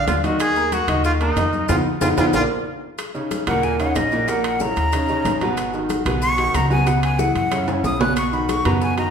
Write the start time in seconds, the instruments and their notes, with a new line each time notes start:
Already playing: grand piano D3 D4 D5
0.07 upright bass D#2, trumpet F4, high bongo, low bongo, high conga, high timbale, low timbale, maracas
0.23 grand piano D#3 D#4 D#5, trumpet F#4, high conga, high timbale, maracas
0.40 trumpet G#4, high bongo, high timbale, maracas
0.56 grand piano A#3 A#4 A#5, high bongo, high conga, maracas
0.72 trumpet F#4, high bongo, high conga, high timbale, low timbale, maracas
0.88 upright bass D#2, grand piano D#3 D#4 D#5, high bongo, high conga, low conga, high timbale, maracas
1.04 trumpet F4, high bongo, maracas
1.20 grand piano A#3 A#4 A#5, trumpet D#4, high conga, high timbale, maracas
1.36 upright bass F2, grand piano D#3 D#4 D#5, high bongo, low bongo, high timbale, low timbale, maracas
1.53 high conga, maracas
1.68 upright bass F2, grand piano B3 D#4 F4, trumpet F4, high bongo, low conga, high timbale, maracas
2.01 upright bass F2, grand piano B3 D#4 F4, trumpet F4, high bongo, low conga, high timbale, maracas
2.17 upright bass F2, grand piano B3 D#4 F4, trumpet F4, high bongo, low conga, high timbale, maracas
2.33 upright bass A#1, grand piano A#3 D4 F4, trumpet F4, high bongo, low conga, high timbale, maracas
2.98 high bongo, high conga, high timbale, maracas
3.15 grand piano C#3 C#4 D#4, high bongo, high conga, maracas
3.31 high bongo, high conga, high timbale, low timbale, maracas
3.47 upright bass D#2, grand piano A#2 A#3 A#4, flute F#5, high conga, low conga, high timbale, maracas
3.63 flute G#5, high bongo, high conga, maracas
3.79 grand piano C#3 C#4 D#4, flute F#5, high bongo, high conga, high timbale, maracas
3.95 upright bass A#1, flute D#5, high bongo, low bongo, high timbale, low timbale, maracas
4.12 grand piano A#2 A#3 A#4, maracas
4.28 grand piano A#2 A#3 A#4, flute F#5, high bongo, high conga, high timbale, maracas
4.44 high bongo, high conga, high timbale, maracas
4.60 grand piano C#3 C#4 E4, flute A#5, high bongo, high conga, low timbale, maracas
4.76 upright bass D#2, high bongo, high conga, high timbale, maracas
4.92 grand piano C#3 C#4 D#4, high bongo, high conga, high timbale, maracas
5.08 grand piano C#3 C#4 D#4, high bongo, high conga, maracas
5.25 upright bass G#1, high bongo, low bongo, high conga, high timbale, low timbale, maracas
5.41 grand piano B2 B3 B4, high conga, high timbale, maracas
5.57 high bongo, high conga, high timbale, maracas
5.73 grand piano D#3 D#4 F#4, high bongo, high conga, maracas
5.89 high bongo, high conga, high timbale, low timbale, maracas
6.05 upright bass B1, grand piano B2 B3 B4, high bongo, high conga, low conga, high timbale, maracas
6.22 flute C#6, high bongo, high conga, maracas
6.38 grand piano D#3 D#4 F#4, high bongo, high timbale, maracas
6.54 upright bass C#2, flute A#5, high bongo, low bongo, high timbale, low timbale, maracas
6.70 grand piano B2 B3 B4, flute G#5, high conga, maracas
6.86 grand piano B2 B3 B4, flute F#5, high bongo, high timbale, maracas
7.03 flute G#5, high bongo, high timbale, maracas
7.18 grand piano E3 E4 G#4, flute F#5, high bongo, high conga, low timbale, maracas
7.35 upright bass F#2, flute F#5, high bongo, high conga, high timbale, maracas
7.51 grand piano C#3 C#4 E4, high bongo, high conga, high timbale, maracas
7.68 grand piano C#3 C#4 E4, high bongo, high conga, high timbale, maracas
7.84 upright bass B1, flute D#6, high bongo, low bongo, low conga, low timbale, maracas
7.99 grand piano B2 B3 B4, flute F#6, low conga, low timbale, maracas
8.16 flute C#6, high bongo, high timbale, maracas
8.32 grand piano D#3 D#4 F#4, flute B5, high bongo, high conga, maracas
8.49 flute C#6, high bongo, high conga, high timbale, low timbale, maracas
8.65 upright bass F#2, grand piano B2 B3 B4, flute A#5, high bongo, high conga, low conga, high timbale, maracas
8.81 flute G#5, high bongo, high conga, maracas
8.98 grand piano D#3 D#4 F#4, flute A#5, high bongo, high conga, high timbale, maracas